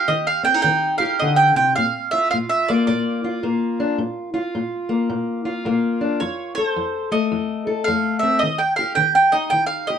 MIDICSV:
0, 0, Header, 1, 3, 480
1, 0, Start_track
1, 0, Key_signature, -2, "major"
1, 0, Tempo, 556070
1, 1516, Time_signature, 4, 2, 24, 8
1, 8620, End_track
2, 0, Start_track
2, 0, Title_t, "Mandolin"
2, 0, Program_c, 0, 25
2, 68, Note_on_c, 0, 75, 79
2, 232, Note_on_c, 0, 77, 90
2, 235, Note_off_c, 0, 75, 0
2, 382, Note_off_c, 0, 77, 0
2, 385, Note_on_c, 0, 79, 92
2, 525, Note_off_c, 0, 79, 0
2, 536, Note_on_c, 0, 79, 103
2, 842, Note_off_c, 0, 79, 0
2, 845, Note_on_c, 0, 77, 85
2, 1015, Note_off_c, 0, 77, 0
2, 1031, Note_on_c, 0, 75, 80
2, 1178, Note_on_c, 0, 79, 98
2, 1198, Note_off_c, 0, 75, 0
2, 1339, Note_off_c, 0, 79, 0
2, 1349, Note_on_c, 0, 79, 92
2, 1512, Note_off_c, 0, 79, 0
2, 1515, Note_on_c, 0, 77, 89
2, 1799, Note_off_c, 0, 77, 0
2, 1822, Note_on_c, 0, 76, 91
2, 1988, Note_off_c, 0, 76, 0
2, 1991, Note_on_c, 0, 77, 82
2, 2035, Note_off_c, 0, 77, 0
2, 2153, Note_on_c, 0, 76, 85
2, 2317, Note_on_c, 0, 74, 76
2, 2320, Note_off_c, 0, 76, 0
2, 2468, Note_off_c, 0, 74, 0
2, 2478, Note_on_c, 0, 74, 74
2, 2924, Note_off_c, 0, 74, 0
2, 5352, Note_on_c, 0, 73, 70
2, 5650, Note_off_c, 0, 73, 0
2, 5653, Note_on_c, 0, 73, 76
2, 5748, Note_off_c, 0, 73, 0
2, 5748, Note_on_c, 0, 72, 76
2, 6142, Note_off_c, 0, 72, 0
2, 6145, Note_on_c, 0, 75, 75
2, 6770, Note_on_c, 0, 77, 83
2, 6809, Note_off_c, 0, 75, 0
2, 7069, Note_off_c, 0, 77, 0
2, 7072, Note_on_c, 0, 76, 80
2, 7243, Note_on_c, 0, 75, 82
2, 7267, Note_off_c, 0, 76, 0
2, 7410, Note_on_c, 0, 79, 77
2, 7424, Note_off_c, 0, 75, 0
2, 7560, Note_off_c, 0, 79, 0
2, 7563, Note_on_c, 0, 77, 86
2, 7724, Note_off_c, 0, 77, 0
2, 7728, Note_on_c, 0, 79, 91
2, 7888, Note_off_c, 0, 79, 0
2, 7898, Note_on_c, 0, 79, 90
2, 8045, Note_on_c, 0, 75, 81
2, 8071, Note_off_c, 0, 79, 0
2, 8200, Note_on_c, 0, 79, 91
2, 8224, Note_off_c, 0, 75, 0
2, 8339, Note_off_c, 0, 79, 0
2, 8343, Note_on_c, 0, 77, 87
2, 8515, Note_off_c, 0, 77, 0
2, 8521, Note_on_c, 0, 75, 83
2, 8620, Note_off_c, 0, 75, 0
2, 8620, End_track
3, 0, Start_track
3, 0, Title_t, "Steel-string acoustic guitar"
3, 0, Program_c, 1, 25
3, 0, Note_on_c, 1, 58, 60
3, 0, Note_on_c, 1, 67, 61
3, 70, Note_on_c, 1, 51, 73
3, 206, Note_off_c, 1, 58, 0
3, 374, Note_on_c, 1, 60, 59
3, 467, Note_off_c, 1, 60, 0
3, 467, Note_on_c, 1, 63, 49
3, 517, Note_off_c, 1, 51, 0
3, 553, Note_on_c, 1, 51, 79
3, 852, Note_off_c, 1, 67, 0
3, 862, Note_on_c, 1, 67, 66
3, 999, Note_off_c, 1, 51, 0
3, 1051, Note_on_c, 1, 50, 65
3, 1342, Note_off_c, 1, 50, 0
3, 1345, Note_on_c, 1, 48, 63
3, 1496, Note_off_c, 1, 67, 0
3, 1516, Note_off_c, 1, 63, 0
3, 1518, Note_off_c, 1, 48, 0
3, 1537, Note_on_c, 1, 46, 73
3, 1838, Note_on_c, 1, 65, 67
3, 1972, Note_off_c, 1, 46, 0
3, 2016, Note_on_c, 1, 46, 72
3, 2327, Note_on_c, 1, 58, 58
3, 2452, Note_off_c, 1, 46, 0
3, 2487, Note_on_c, 1, 46, 74
3, 2796, Note_off_c, 1, 65, 0
3, 2799, Note_on_c, 1, 65, 65
3, 2927, Note_off_c, 1, 46, 0
3, 2950, Note_off_c, 1, 58, 0
3, 2960, Note_on_c, 1, 46, 72
3, 2963, Note_on_c, 1, 58, 56
3, 3278, Note_on_c, 1, 62, 59
3, 3404, Note_off_c, 1, 46, 0
3, 3418, Note_off_c, 1, 58, 0
3, 3424, Note_off_c, 1, 62, 0
3, 3438, Note_on_c, 1, 46, 72
3, 3740, Note_off_c, 1, 65, 0
3, 3744, Note_on_c, 1, 65, 64
3, 3883, Note_off_c, 1, 46, 0
3, 3926, Note_on_c, 1, 46, 74
3, 4221, Note_on_c, 1, 58, 59
3, 4366, Note_off_c, 1, 46, 0
3, 4398, Note_on_c, 1, 46, 77
3, 4695, Note_off_c, 1, 65, 0
3, 4706, Note_on_c, 1, 65, 62
3, 4842, Note_off_c, 1, 46, 0
3, 4873, Note_off_c, 1, 58, 0
3, 4878, Note_on_c, 1, 46, 70
3, 4884, Note_on_c, 1, 58, 58
3, 5187, Note_on_c, 1, 62, 54
3, 5322, Note_off_c, 1, 46, 0
3, 5338, Note_off_c, 1, 62, 0
3, 5339, Note_off_c, 1, 58, 0
3, 5363, Note_on_c, 1, 41, 71
3, 5663, Note_off_c, 1, 65, 0
3, 5676, Note_on_c, 1, 69, 63
3, 5804, Note_off_c, 1, 41, 0
3, 5837, Note_on_c, 1, 41, 73
3, 6142, Note_on_c, 1, 57, 58
3, 6281, Note_off_c, 1, 41, 0
3, 6315, Note_on_c, 1, 41, 78
3, 6609, Note_off_c, 1, 69, 0
3, 6619, Note_on_c, 1, 69, 66
3, 6760, Note_off_c, 1, 41, 0
3, 6790, Note_off_c, 1, 57, 0
3, 6797, Note_on_c, 1, 41, 76
3, 6801, Note_on_c, 1, 57, 60
3, 7104, Note_on_c, 1, 60, 55
3, 7240, Note_off_c, 1, 41, 0
3, 7253, Note_off_c, 1, 69, 0
3, 7256, Note_off_c, 1, 57, 0
3, 7277, Note_off_c, 1, 60, 0
3, 7277, Note_on_c, 1, 51, 72
3, 7586, Note_on_c, 1, 67, 62
3, 7720, Note_off_c, 1, 51, 0
3, 7742, Note_on_c, 1, 51, 70
3, 8052, Note_on_c, 1, 63, 56
3, 8193, Note_off_c, 1, 51, 0
3, 8218, Note_on_c, 1, 51, 75
3, 8536, Note_off_c, 1, 67, 0
3, 8546, Note_on_c, 1, 67, 67
3, 8620, Note_off_c, 1, 51, 0
3, 8620, Note_off_c, 1, 63, 0
3, 8620, Note_off_c, 1, 67, 0
3, 8620, End_track
0, 0, End_of_file